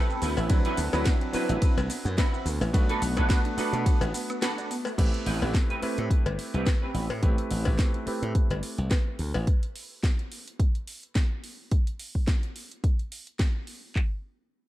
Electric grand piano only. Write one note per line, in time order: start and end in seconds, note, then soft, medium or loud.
0.00 0.20 A3 medium
0.00 0.20 C4 medium
0.00 0.20 E4 medium
0.00 0.21 G4 medium
0.00 0.21 B4 medium
0.49 0.89 F#3 medium
0.49 0.89 C4 medium
0.49 0.90 D4 medium
0.49 0.90 E4 medium
0.49 0.90 B4 loud
0.93 1.31 F#3 medium
0.93 1.31 C4 medium
0.93 1.31 D4 medium
0.93 1.31 E4 medium
0.93 1.31 B4 medium
1.32 2.70 F#3 medium
1.32 2.71 C4 medium
1.32 2.71 D4 medium
1.32 2.71 E4 medium
1.32 2.71 B4 loud
2.73 3.14 A3 medium
2.73 3.14 B3 medium
2.73 3.14 D4 medium
2.73 3.14 F#4 medium
2.73 3.14 B4 loud
3.17 3.55 A3 medium
3.17 3.55 B3 medium
3.17 3.55 D4 medium
3.17 3.55 F#4 medium
3.17 3.55 B4 medium
3.57 4.95 A3 medium
3.57 4.95 B3 medium
3.57 4.95 D4 medium
3.57 4.96 F#4 medium
3.57 4.96 B4 medium
4.98 5.38 A3 medium
4.98 5.38 C4 medium
4.98 5.38 E4 medium
4.98 5.38 G4 medium
4.98 5.38 B4 medium
5.42 5.79 A3 medium
5.42 5.80 C4 medium
5.42 5.80 E4 medium
5.42 5.80 G4 medium
5.42 5.80 B4 medium
5.82 7.19 A3 medium
5.82 7.20 C4 medium
5.82 7.20 E4 medium
5.82 7.20 G4 medium
5.82 7.20 B4 medium
7.22 7.62 A3 medium
7.22 7.62 C4 medium
7.22 7.63 E4 medium
7.22 7.63 G4 medium
7.22 7.63 B4 medium
7.66 8.04 A3 medium
7.66 8.04 C4 medium
7.66 8.04 E4 medium
7.66 8.04 G4 medium
7.66 8.04 B4 medium
8.06 9.17 A3 medium
8.06 9.17 C4 medium
8.06 9.18 E4 medium
8.06 9.18 G4 medium
8.06 9.18 B4 medium